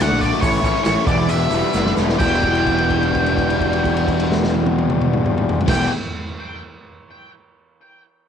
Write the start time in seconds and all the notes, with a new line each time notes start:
Already playing: D3 A3 F#4 D5 A5 D6
0.00 D2 D3 A3 D4 F#4 F#5, snare, open hi-hat, shaker
0.11 A#1
0.21 A3 D4 F#4 D5, kick, open hi-hat, shaker
0.33 snare
0.40 A1 A2 E3 A3 C#4 E4 C#5 C#6, kick, open hi-hat, shaker
0.63 A1 C#4, kick, open hi-hat, shaker
0.76 snare
0.84 A1 A2 E3 A3 C#4 E4 C#5, snare, open hi-hat, shaker
1.06 E1 E2 B2 E3 G3 B3 E4 B4 D5 G5 D6, kick, open hi-hat, shaker
1.27 E3 G3 B3 D4 E4 E5, open hi-hat, shaker
1.50 E1 E3 G3 B3 E4, open hi-hat, shaker
1.73 F#1 E3 G3 B3 D4 E4, snare, shaker
1.86 snare
1.97 E1 E3 G3 B3 E4, snare, shaker
2.09 snare
2.18 E1 E2 B2 E3 G3 B3 E4 G4 D5 G5, kick, crash, shaker
2.23 E4
2.43 kick, crash
2.55 crash
2.67 kick, crash
2.78 crash
2.90 kick, crash
3.03 crash
3.14 kick, crash
3.26 crash
3.37 kick, crash
3.50 crash
3.61 kick, crash
3.73 crash
3.84 kick, crash
3.97 crash
4.08 kick, crash
4.20 crash
4.32 snare
4.44 snare
4.54 high tom
4.66 high tom
4.79 high tom
4.90 mid tom
5.01 mid tom
5.13 mid tom
5.26 mid tom
5.38 mid tom
5.49 floor tom
5.61 floor tom
5.66 E1 E2 B2 E3 G3 B3 G5, kick, snare, crash
5.70 E4 G4 D5